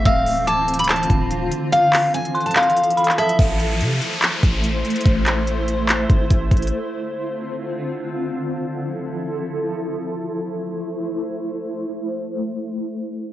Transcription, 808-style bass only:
\new Staff \with { instrumentName = "808-style bass" } { \clef bass \time 4/4 \key a \minor \tempo 4 = 144 d,,2~ d,,8 d,,4 r8 | r1 | a,,4 c8 r4 a,,4 r8 | a,,2~ a,,8 gis,,8 a,,8 a,,8 |
r1 | r1 | r1 | r1 | }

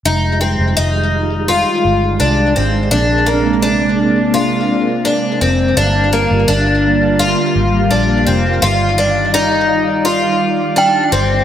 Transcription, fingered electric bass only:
\new Staff \with { instrumentName = "Fingered electric bass" } { \clef bass \time 4/4 \key f \dorian \tempo 4 = 84 f,,8. f,,16 f,,4~ f,,16 r16 g,,8 c,8 aes,,8 | bes,,2.~ bes,,8 f,,8 | g,,8. g,,16 g,,4~ g,,16 r16 aes,,8 bes,,8 f,,8 | g,,2.~ g,,8 g,,8 | }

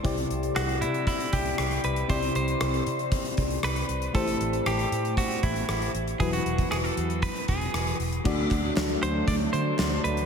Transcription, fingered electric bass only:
\new Staff \with { instrumentName = "Fingered electric bass" } { \clef bass \time 4/4 \key c \lydian \tempo 4 = 117 c,8 c,8 c,8 c8. r16 c,8 c,8 c,8 | c,8 c,8 c,8 c8. r16 c,8 c,8 c,8 | a,,8 a,,8 a,,8 a,8. r16 a,,8 a,,8 a,,8 | e,,8 e,,8 e,,8 e,8. r16 e,,8 e,,8 e,,8 |
d,8 d,8 d,8 d,8 d,8 d8 d,8 d,8 | }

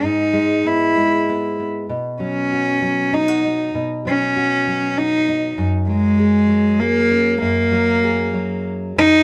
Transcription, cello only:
\new Staff \with { instrumentName = "Cello" } { \time 3/4 \key b \major \tempo 4 = 97 dis'4 e'4. r8 | r8 cis'4. dis'4 | r8 cis'4. dis'4 | r8 gis4. ais4 |
ais2 r8 dis'8 | }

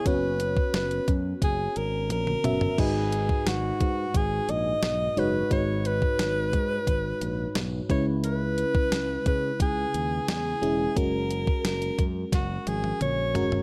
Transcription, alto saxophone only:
\new Staff \with { instrumentName = "Alto saxophone" } { \time 4/4 \key gis \minor \tempo 4 = 88 b'4 b'8 r8 gis'8 ais'8 ais'4 | gis'4 fis'4 gis'8 dis''4 b'8 | cis''8 b'2~ b'8 r8 cis''8 | b'4. b'8 gis'4 gis'4 |
ais'4 ais'8 r8 fis'8 gis'8 cis''4 | }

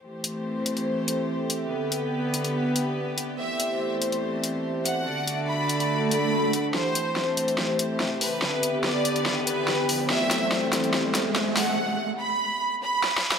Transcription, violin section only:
\new Staff \with { instrumentName = "Violin section" } { \time 4/4 \key a \dorian \tempo 4 = 143 r1 | r1 | e''4. r2 fis''8~ | fis''4 b''4. b''4. |
c''4. r2 b'8~ | b'4 d''4. b'4. | e''4. r2 fis''8~ | fis''4 b''4. b''4. | }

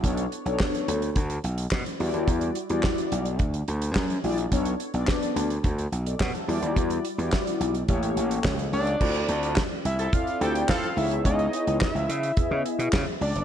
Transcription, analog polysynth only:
\new Staff \with { instrumentName = "Analog polysynth" } { \time 4/4 \key b \minor \tempo 4 = 107 << { r1 | r1 | r2 r8. <a' d''>16 <cis'' fis''>16 <e'' a''>8 r16 | r1 |
\key d \lydian r1 | r1 | } \\ { <b d' a' cis''>16 r8 <b d' a' cis''>4 r4. r16 <g e' fis' d''>8~ | <g e' fis' d''>8 r16 <g e' fis' d''>4 r4. r16 <g e' fis' d''>16 r16 | <b d' a' cis''>16 r8 <b d' a' d''>4 r4. r16 <g e' fis' d''>8~ | <g e' fis' d''>8 r16 <g e' fis' d''>4 r16 <bes g' a' cis''>4~ <bes g' a' cis''>16 r16 <bes g' a' cis''>16 r16 |
<c' e' f' a' d''>4 r4 <c' e' f' a' d''>4 r8 <b dis' e' gis' cis''>8~ | <b dis' e' gis' cis''>4 r4 <b e' gis' dis'' e''>4 r4 | } >> }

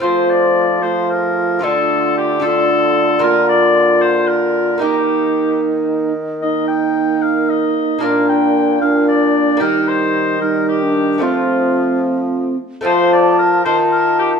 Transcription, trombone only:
\new Staff \with { instrumentName = "Trombone" } { \time 6/8 \key f \mixolydian \tempo 4. = 75 a4. a4. | a4. a4. | bes2. | bes2~ bes8 r8 |
bes2. | bes4. bes4. | g4. g4. | a2~ a8 r8 |
f'4. f'4. | }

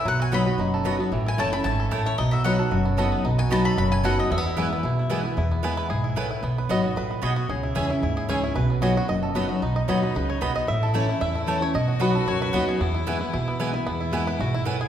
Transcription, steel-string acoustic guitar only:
\new Staff \with { instrumentName = "Steel-string acoustic guitar" } { \time 4/4 \key e \major \tempo 4 = 226 << { r4 <fis b dis' fis'>8 <dis' fis'>8 r4 <fis b dis' fis'>8 <dis' fis'>8 | r4 <e a cis' e'>8 <cis' e'>8 r2 | r4 <fis b dis' fis'>8 fis'8 r4 <fis b dis' fis'>4 | r4 <fis b dis' fis'>4 r4 <fis b dis' fis'>4 |
r4 <e gis b e'>8 <b e'>8 r4 <e gis b e'>8 <b e'>8 | r4 <e gis b e'>4 r2 | r4 <fis b dis' fis'>8 <dis' fis'>8 r2 | r4 <e gis cis' e'>8 <cis' e'>8 r4 <e gis cis' e'>8 <cis' e'>8 |
r4 <fis b dis' fis'>8 <dis' fis'>8 r4 <fis b dis' fis'>8 <dis' fis'>8 | r4 <fis b dis' fis'>8 <dis' fis'>8 r2 | r4 <e a cis' e'>8 <cis' e'>8 r4 <e a cis' e'>8 <cis' e'>8 | r4 <fis b dis' fis'>8 <dis' fis'>8 r4 <fis b dis' fis'>4 |
r4 <e gis b e'>8 <b e'>8 r4 <e gis b e'>8 <b e'>8 | r4 <e gis b e'>4 r2 | } \\ { b,2 fis,2 | a,2 gis,4 a,4 | b,2 fis,2 | b,2 fis,2 |
e,2 b,2 | e,2 gis,4 a,4 | b,2 a,4 b,4 | cis2 gis,2 |
b,2 fis,2 | b,2 cis4 b,4 | a,2 e,2 | b,2 fis,2 |
e,2 b,2 | e,2 gis,4 a,4 | } >> }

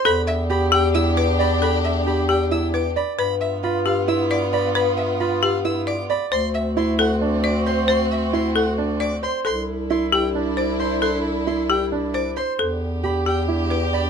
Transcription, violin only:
\new Staff \with { instrumentName = "Violin" } { \time 7/8 \key c \major \tempo 4 = 134 b''8 e''8 b''8 g''8 e'''8 d'''8 b''8 | b''8 e''8 b''8 g''8 e'''8 d'''8 b''8 | b''8 e''8 b''8 f''8 e'''8 d'''8 b''8 | b''8 e''8 b''8 f''8 e'''8 d'''8 b''8 |
c'''8 e''8 c'''8 fis''8 r8 d'''8 c'''8 | c'''8 e''8 c'''8 fis''8 r8 d'''8 c'''8 | c'''8 r8 c'''8 g''8 r8 d'''8 c'''8 | c'''8 r8 c'''8 g''8 r8 d'''8 c'''8 |
r4 b''8 g''8 r8 d'''8 b''8 | }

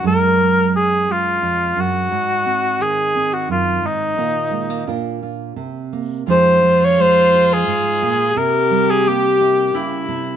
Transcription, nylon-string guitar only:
\new Staff \with { instrumentName = "Nylon-string guitar" } { \clef bass \time 3/4 \key bes \phrygian \tempo 4 = 87 << { <ges aes>8 aes4 aes4.~ | aes8 c'4 c'4. | <ees bes ees' f'>8 aes16 bes16 <d' f' bes'>8 f'8 r8 bes8 | \key f \minor <f aes ees' aes'>4 aes8 aes'4. |
r4 bes8 e'4. | } \\ { ges,2 f,8 ges,8 | aes,4 ees4 ges,8 aes,8 | bes,4 bes,4 c4 | f,8 f4. aes,8 bes,8 |
c8 g4. des8 c8 | } >> }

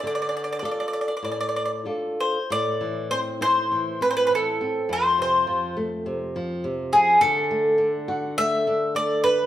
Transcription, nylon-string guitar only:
\new Staff \with { instrumentName = "Nylon-string guitar" } { \time 4/4 \key d \minor \tempo 4 = 102 d4 <d' f' a'>4 a,4 <d' f' a'>4 | \key a \minor a,8 e8 c'8 e'8 e8 c'8 e8 c'8 | f,8 c8 f8 a8 c8 f8 c8 f8 | d8 a8 d'8 fis'8 a8 d'8 a8 d'8 | }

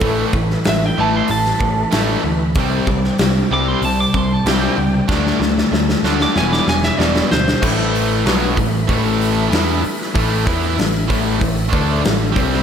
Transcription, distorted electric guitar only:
\new Staff \with { instrumentName = "Distorted electric guitar" } { \clef bass \time 4/4 \key a \minor \tempo 4 = 95 <a, e a>8 <a, e>8 <a, e>8 <a, e a>8 <a, e>8 <a, e>8 <a, e a>8 <a, e>8 | <c g c'>8 <c g>8 <c g>8 <c g c'>8 <c g>8 <c g>8 <c g c'>8 <c g>8 | <d a d'>8 <d a>8 <d a>8 <d a d'>8 <e, b, e>8 <e, b,>8 <e, b, e>8 <e, b,>8 | <a, e a>4 <b, fis b>8 <a, e>8 <a, e a>4 <e b e'>8 r8 |
<a, e a>8 <e b e'>8 <a, e>8 <a, e a>8 <a, e>8 <d a d'>8 <a, e>8 <c g c'>8 | }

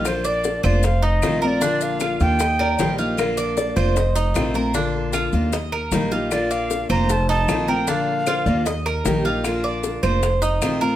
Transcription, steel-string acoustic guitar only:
\new Staff \with { instrumentName = "Steel-string acoustic guitar" } { \time 4/4 \key bes \major \tempo 4 = 153 <d bes d' f'>4. <bes d' f'>8 r4 <c ees a c' f'>8 <a c' f'>8 | <d bes d' f'>4. <bes d' f'>8 r4 <ees g bes ees' g'>8 <bes ees' g'>8 | <d bes d' f'>4. <bes d' f'>8 r4 <c ees a c' f'>8 <a c' f'>8 | <d bes d' f'>4. <bes d' f'>8 r4 <ees g bes ees' g'>8 <bes ees' g'>8 |
<d bes d' f'>4. <bes d' f'>8 r4 <c ees a c' f'>8 <a c' f'>8 | <d bes d' f'>4. <bes d' f'>8 r4 <ees g bes ees' g'>8 <bes ees' g'>8 | <d bes d' f'>4. <bes d' f'>8 r4 <c ees a c' f'>8 <a c' f'>8 | }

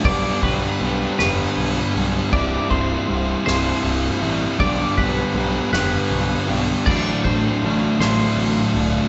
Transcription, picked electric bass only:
\new Staff \with { instrumentName = "Picked electric bass" } { \clef bass \time 6/8 \key g \mixolydian \tempo 4. = 53 b,,8 b,,8 b,,8 f,,8 b,,8 b,,8 | c,,8 c,,8 c,,8 c,,8 c,,8 a,,8 | b,,8 b,,8 b,,8 f,,8 b,,8 b,,8 | a,,8 a,,8 a,,8 a,,8 a,,8 c,,8 | }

